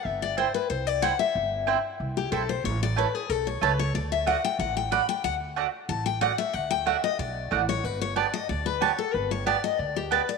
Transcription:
<<
  \new Staff \with { instrumentName = "Steel-string acoustic guitar" } { \time 4/4 \key d \major \tempo 4 = 185 e''8 d''8 c''8 b'8 c''8 d''8 fis''8 e''8~ | e''2 r8 g'8 a'8 c''8 | cis''8 d''8 b'8 gis'8 a'8 cis''8 b'8 cis''8 | d''8 e''8 fis''8 g''8 fis''8 g''8 b''8 g''8 |
fis''8 r4. a''8 g''8 fis''8 e''8 | fis''8 g''8 e''8 ees''8 d''4. cis''8 | b'8 cis''8 d''8 ees''8 d''8 b'8 cis''8 a'8 | b'8 cis''8 d''8 ees''8 d''8 g'8 b'8 d''8 | }
  \new Staff \with { instrumentName = "Mandolin" } { \time 4/4 \key d \major r4 <c' e' c'' g''>8 r4. <c' e' c'' g''>8 r8 | r4 <c' e' c'' g''>8 r4. <c' e' c'' g''>8 r8 | r4 <a e' cis'' a''>8 r4. <a e' cis'' a''>8 r8 | r4 <a fis' d'' fis''>8 r4. <a fis' d'' fis''>8 r8 |
r4 <a fis' d'' fis''>8 r4. <a fis' d'' fis''>8 r8 | r4 <a fis' d'' fis''>8 r4. <a fis' d'' fis''>8 r8 | r4 <b g' d'' a''>8 r4. <b g' d'' a''>8 r8 | r4 <b g' d'' a''>8 r4. <b g' d'' a''>8 r8 | }
  \new Staff \with { instrumentName = "Upright bass" } { \clef bass \time 4/4 \key d \major g,,2 c,2 | g,,2 c,4 b,,4 | a,,2 b,,4 cis,4 | d,2 a,,2 |
d,2 a,,2 | d,2 b,,4 a,,4 | g,,2 d,2 | g,,2 d,2 | }
>>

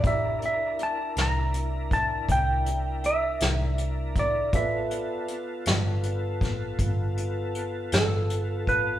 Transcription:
<<
  \new Staff \with { instrumentName = "Electric slide guitar" } { \time 12/8 \key c \major \tempo 4. = 53 e''8 e''8 a''8 bes''4 a''8 g''4 e''4. d''8 | e''4 r2. r8 a'4 b'8 | }
  \new Staff \with { instrumentName = "Upright piano" } { \time 12/8 \key c \major <e' g' bes' d''>1. | <f' a' b' d''>1. | }
  \new Staff \with { instrumentName = "Tonewheel organ" } { \time 12/8 \key c \major <d' e' bes'>1. | <b f' a'>1. | }
  \new Staff \with { instrumentName = "Fingered electric bass" } { \clef bass \time 12/8 \key c \major c,4. c,4. c,4. c,4. | g,,4. g,,4. g,,4. g,,4. | }
  \new DrumStaff \with { instrumentName = "Drums" } \drummode { \time 12/8 <hh bd>8 hh8 hh8 <hh sn>8 hh8 <hh bd>8 <hh bd>8 hh8 hh8 <hh sn>8 hh8 <hh bd>8 | <hh bd>8 hh8 hh8 <hh sn>8 hh8 <hh bd sn>8 <hh bd>8 hh8 hh8 <hh sn>8 hh8 <hh bd>8 | }
>>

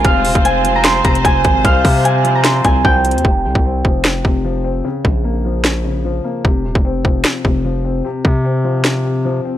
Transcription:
<<
  \new Staff \with { instrumentName = "Harp" } { \time 4/4 \key f \minor \tempo 4 = 150 f''4 aes''8. bes''16 c'''8 bes''8 aes''8 r8 | f''4 aes''8. bes''16 c'''8 aes''8 g''8 r8 | r1 | r1 |
r1 | r1 | }
  \new Staff \with { instrumentName = "String section" } { \time 4/4 \key f \minor << { <f' c''>1~ | <f' c''>1 | r1 | r1 |
r1 | r1 | } \\ { <aes c'>1 | <g c'>1 | r1 | r1 |
r1 | r1 | } >> }
  \new Staff \with { instrumentName = "Grand piano" } { \clef bass \time 4/4 \key f \minor c8 c8 c'8 f4 c8 f8 c'8 | c8 c8 c'8 f4 c8 f8 c'8 | c8 c8 c'8 f4 c8 f8 c'8 | des8 des8 bes8 f4 des8 f8 bes8 |
c8 c8 c'8 f4 c8 f8 c'8 | c8 c8 c'8 f4 c8 f8 c'8 | }
  \new Staff \with { instrumentName = "808-style bass" } { \clef bass \time 4/4 \key f \minor f,,8 ees,,16 f,,4.~ f,,16 f,,8 f,,8 aes,,8 | c,8 c2 c,8 c,8. ees,16 | f,,8 c,16 c,8. f,,4 f,,4. | r8 bes,,2. r8 |
f,,8 ees,,16 f,,8. f,,8 r8 f,,4. | r8 c2. r8 | }
  \new DrumStaff \with { instrumentName = "Drums" } \drummode { \time 4/4 <hh bd>8 <hh hho>16 <hh bd>16 hh8 hh8 <hh sn>8 <hh bd>16 hh16 <hh bd>8 <hh bd>8 | <hh bd>8 <hho bd>8 hh8 hh8 <hh sn>8 <hh bd>8 \tuplet 3/2 { bd16 r16 r16 hh16 hh16 hh16 } | bd8. bd16 r8 bd8 sn8 bd8 r4 | r8 bd8 r4 sn4 r4 |
bd8. bd16 r8 bd8 sn8 bd8 r4 | r8 bd8 r4 sn4 r4 | }
>>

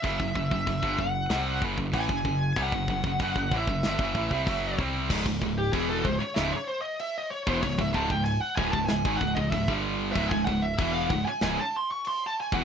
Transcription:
<<
  \new Staff \with { instrumentName = "Lead electric guitar" } { \time 4/4 \key cis \minor \tempo 4 = 95 e''4. fis''4 r8 gis''4 | fis''4. e''2 r8 | r8. g'16 gis'16 a'16 bis'16 cis''16 e''16 cis''16 bis'16 dis''16 e''16 dis''16 cis''16 bis'16 | cis''16 e''16 a''16 g''16 gis''16 fis''16 gis''16 a''16 gis''8 fis''16 dis''16 e''8 r8 |
e''16 gis''16 fis''16 e''16 e''16 eis''16 fis''16 gis''16 gis''16 a''16 bis''16 cis'''16 bis''16 a''16 gis''16 fis''16 | }
  \new Staff \with { instrumentName = "Distorted electric guitar" } { \clef bass \time 4/4 \key cis \minor <fis, cis>16 <fis, cis>16 <fis, cis>16 <fis, cis>16 <fis, cis>16 <g, d>16 <fis, cis>8 <bis, g bis>8 <fis, cis>16 <fis, cis>16 <a, e>16 <fis, cis>16 <fis, cis>8 | <bis, g>16 <fis, cis>16 <fis, cis>16 <fis, cis>16 <fis, cis>16 <fis, cis>16 <a, e>16 <fis, cis>16 <g, d>16 <fis, cis>16 <a, e>16 <bis, g>16 <fis, cis fis>8 <bis, g bis>8 | <cis, gis,>16 <cis, gis,>16 <cis, gis,>8 <e, b, e>8 <cis, gis,>16 r16 <cis, gis,>16 r4. <e, b,>16 | <cis, gis,>16 <cis, gis,>16 <cis, gis,>16 <cis, gis,>8 r16 <d, a,>16 <cis, gis,>16 <cis, gis,>16 <gis, dis>16 <cis, gis,>16 <cis, gis,>16 <cis, gis,>16 <g, d g>8. |
<cis, gis,>16 <cis, gis,>16 <cis, gis,>8 <e, b, e>8 <cis, gis,>16 r16 <cis, gis,>16 r4. <e, b,>16 | }
  \new Staff \with { instrumentName = "Distorted electric guitar" } { \clef bass \time 4/4 \key cis \minor <fis, cis>16 <fis, cis>16 <fis, cis>16 <fis, cis>16 <fis, cis>16 <g, d>16 <fis, cis>8 <bis, g bis>8 <fis, cis>16 <fis, cis>16 <a, e>16 <fis, cis>16 <fis, cis>8 | <bis, g>16 <fis, cis>16 <fis, cis>16 <fis, cis>16 <fis, cis>16 <fis, cis>16 <a, e>16 <fis, cis>16 <g, d>16 <fis, cis>16 <a, e>16 <bis, g>16 <fis, cis fis>8 <bis, g bis>8 | <cis, gis,>16 <cis, gis,>16 <cis, gis,>8 <e, b, e>8 <cis, gis,>16 r16 <cis, gis,>16 r4. <e, b,>16 | <cis, gis,>16 <cis, gis,>16 <cis, gis,>16 <cis, gis,>8 r16 <d, a,>16 <cis, gis,>16 <cis, gis,>16 <gis, dis>16 <cis, gis,>16 <cis, gis,>16 <cis, gis,>16 <g, d g>8. |
<cis, gis,>16 <cis, gis,>16 <cis, gis,>8 <e, b, e>8 <cis, gis,>16 r16 <cis, gis,>16 r4. <e, b,>16 | }
  \new Staff \with { instrumentName = "Overdriven electric guitar" } { \clef bass \time 4/4 \key cis \minor r1 | r1 | <cis, gis,>16 <cis, gis,>16 <cis, gis,>8 <e, b, e>8 <cis, gis,>16 r16 <cis, gis,>16 r4. <e, b,>16 | <cis, gis,>16 <cis, gis,>16 <cis, gis,>16 <cis, gis,>8 r16 <d, a,>16 <cis, gis,>16 <cis, gis,>16 <gis, dis>16 <cis, gis,>16 <cis, gis,>16 <cis, gis,>16 <g, d g>8. |
<cis, gis,>16 <cis, gis,>16 <cis, gis,>8 <e, b, e>8 <cis, gis,>16 r16 <cis, gis,>16 r4. <e, b,>16 | }
  \new Staff \with { instrumentName = "Picked electric bass" } { \clef bass \time 4/4 \key cis \minor fis,,16 fis,,16 fis,,16 fis,,16 fis,,16 g,,16 fis,,8 bis,,8 fis,,16 fis,,16 a,,16 fis,,16 fis,,8 | bis,,16 fis,,16 fis,,16 fis,,16 fis,,16 fis,,16 a,,16 fis,,16 g,,16 fis,,16 a,,16 bis,,16 fis,,8 bis,,8 | cis,,16 cis,,16 cis,,8 e,,8 cis,,16 r16 cis,,16 r4. e,,16 | cis,,16 cis,,16 cis,,16 cis,,8 r16 d,,16 cis,,16 cis,,16 gis,,16 cis,,16 cis,,16 cis,,16 g,,8. |
cis,,16 cis,,16 cis,,8 e,,8 cis,,16 r16 cis,,16 r4. e,,16 | }
  \new DrumStaff \with { instrumentName = "Drums" } \drummode { \time 4/4 <hho bd>16 bd16 bd16 bd16 <hho bd>16 bd16 bd8 <hho sn>8 bd16 bd16 <hho bd>16 bd16 bd8 | <hho bd>16 bd16 bd16 bd16 <hho bd>16 bd16 bd16 bd16 <hho sn>16 bd16 bd16 bd16 <hho bd>8 bd8 | <cymc bd>16 bd16 bd8 <cymc bd>8 bd8 <cymc sn>4 cymc8. bd16 | <cymc bd>16 bd16 bd16 bd16 cymc8 bd16 bd16 <cymc sn>16 bd16 bd16 bd16 <cymc bd>16 bd8. |
<cymc bd>16 bd16 bd8 <cymc bd>8 bd8 <cymc sn>4 cymc8. bd16 | }
>>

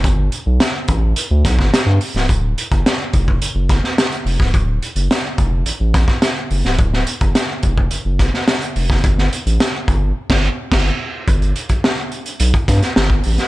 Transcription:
<<
  \new Staff \with { instrumentName = "Sub bass" } { \clef bass \time 4/4 \key g \major \tempo 4 = 107 g,,8 r16 b,,16 r8 a,,8 r16 d,16 b,,16 g,,16 r16 g,16 r16 cis,,16 | d,,8 r16 fis,,16 r8 f,,8 fis,,16 fis,,8 r8. f,,16 cis,,16 | d,,8 r16 fis,,16 r8 f,,8 a,,16 a,,8 r8. fis,,16 cis,,16 | d,,8 r16 fis,,16 r8 f,,8 fis,,16 fis,,8 r8. f,,16 fis,,16 |
g,,8 r16 a,,16 r8 g,,8 r16 g,,8 r16 g,,8 r8 | g,,8 r16 b,,16 r4 b,,16 r16 g,16 r16 g,,8 a,,16 r16 | }
  \new DrumStaff \with { instrumentName = "Drums" } \drummode { \time 4/4 <hh bd>8 hh8 <hh sn>8 <hh bd>8 hh8 <hh bd sn>16 <bd sn>16 <hh sn>8 hho16 sn16 | <hh bd>8 hh16 <hh bd>16 <hh sn>8 <hh bd>16 bd16 hh8 <hh bd sn>16 sn16 <hh sn>16 hh16 hho16 <bd sn>16 | <hh bd>8 hh16 hh16 <hh sn>8 <hh bd>8 hh8 <hh bd sn>16 <bd sn>16 <hh sn>8 hho16 sn16 | <hh bd>16 sn16 hh16 <hh bd>16 <hh sn>8 <hh bd>16 bd16 hh8 <hh bd sn>16 sn16 <hh sn>16 hh16 hho16 <bd sn>16 |
<hh bd>16 sn16 hh16 hh16 <hh sn>8 <hh bd>8 r16 <cymc bd sn>8. <cymc bd sn>4 | <hh bd>16 hh16 hh16 <hh bd>16 sn8 hh16 hh16 hh16 <hh bd>16 <hh bd sn>16 <hh sn>16 sn16 bd16 hho16 <hh sn>16 | }
>>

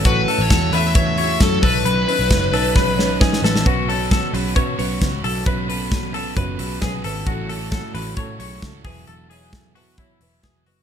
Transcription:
<<
  \new Staff \with { instrumentName = "Lead electric guitar" } { \time 4/4 \key b \mixolydian \tempo 4 = 133 b'8. cis''8. e''4. a'8 b'8~ | b'2. r4 | r1 | r1 |
r1 | r1 | }
  \new Staff \with { instrumentName = "Clean electric guitar" } { \time 4/4 \key b \mixolydian fis'8 a'8 a'8 b'8 cis''8 cis''4 a'8 | b'8 b'4 a'8 b'4 gis'8 a'8 | fis'8 a'8 a'8 b'8 cis''8 cis''4 a'8 | b'8 b'4 a'8 b'4 gis'8 a'8 |
fis'8 a'8 a'8 b'8 cis''8 cis''4 gis'8 | a'8 gis'4 fis'8 e'4 gis'8 fis'8 | }
  \new Staff \with { instrumentName = "Upright piano" } { \time 4/4 \key b \mixolydian << { r1 | r1 | r1 | r1 |
r1 | r4. a''16 b''16 gis''8 fis''8 fis''8 dis''8 | } \\ { <cis' fis' a'>8 <cis' fis' a'>8 <cis' fis' a'>8 <cis' fis' a'>8 <cis' fis' b'>8 <cis' fis' gis'>8 <cis' fis' a'>8 <cis' dis' b'>8~ | <cis' dis' b'>8 <cis' dis' b'>8 <cis' dis' cis''>8 <cis' dis' b'>8 <cis' dis' gis'>8 <cis' dis' cis''>8 <cis' dis' b'>8 <cis' dis' b'>8 | <cis' fis' b'>8 <cis' fis' cis''>8 <cis' fis' cis''>8 <cis' fis' gis'>8 <cis' fis' b'>8 <cis' fis' b'>8 <cis' fis' b'>8 <cis' fis' a'>8 | <cis' fis' b'>8 <cis' fis' a'>8 <cis' fis' a'>8 <cis' fis' a'>8 <cis' fis' b'>8 <cis' fis' gis'>8 <cis' fis' b'>8 <cis' fis' b'>8 |
<cis' fis' a'>8 <cis' fis' a'>8 <cis' fis' a'>8 <cis' fis' a'>8 <cis' fis' a'>8 <cis' fis' gis'>8 <cis' fis' a'>8 <e' fis' b'>8~ | <e' fis' b'>8 <e' fis' cis''>8 <e' fis' a'>8 <e' fis' b'>8 <e' fis' cis''>8 <e' fis' b'>8 <e' fis' b'>8 <e' fis' b'>8 | } >> }
  \new Staff \with { instrumentName = "Overdriven electric guitar" } { \time 4/4 \key b \mixolydian <a e' fis' cis''>8. <e' fis' cis''>8. <a e' fis' cis''>4 <a e' fis' cis''>4 <fis cis' dis' b'>8 | <b, dis fis cis' dis' b'>8. <fis cis' dis' b'>8. <fis cis' dis' b'>4 <fis cis' dis' b'>4 <fis cis' dis' b'>8 | <b cis' fis' b'>8 <b cis' fis' b'>4 <b cis' fis' b'>4 <b cis' fis' b'>8. <cis' fis' b'>8. | <b cis' fis' b'>8 <b cis' fis' b'>4 <b cis' fis' b'>4 <b cis' fis' b'>8. <cis' fis' b'>8. |
<a e' fis' cis''>8 <a e' fis' cis''>4 <a e' fis' cis''>4 <a e' fis' cis''>8. <e' fis' cis''>16 <e fis b fis' b'>8~ | <e fis b fis' b'>8 <fis b fis' b'>4 <fis b fis' b'>4 <e fis b fis' b'>8. <b fis' b'>8. | }
  \new Staff \with { instrumentName = "Picked electric bass" } { \clef bass \time 4/4 \key b \mixolydian a,,8 r16 a,,16 e,8 e,4. fis,8 b,,8 | b,,8 r16 b,,16 fis,,8 b,,2 a,,8 | b,,4~ b,,16 r16 b,,8 b,8 b,,8 cis,8 b,,8 | b,,2 fis,,8 b,,8 b,,8 gis,,8 |
a,,4~ a,,16 r16 a,,8 a,8 b,,8 cis,8 e,,8 | e,,2 b,,8 e,,8 e,,8 fis,,8 | }
  \new DrumStaff \with { instrumentName = "Drums" } \drummode { \time 4/4 <hhp bd cymr>8 hho8 <hhp bd cymr sn>8 hho8 <hhp bd cymr>8 hho8 <hhp bd cymr sn>8 <hho bd>8 | <hhp cymr>8 hho8 <hhp bd cymr sn>8 hho8 <bd sn>8 sn8 <bd sn>16 sn16 sn16 sn16 | <hh bd>8 hho8 <hh bd sn>8 hho8 <hh bd>8 hho8 <hh bd sn>8 hho8 | <hh bd>8 hho8 <hh bd sn>8 hho8 <hh bd>8 hho8 <hh bd sn>8 hho8 |
<hh bd>8 hho8 <hh bd sn>8 hho8 <hh bd>8 hho8 <hh bd sn>8 <hho bd>8 | hh8 hho8 <hh bd sn>8 hho8 <hh bd>8 hho8 <hh bd sn>8 hho8 | }
>>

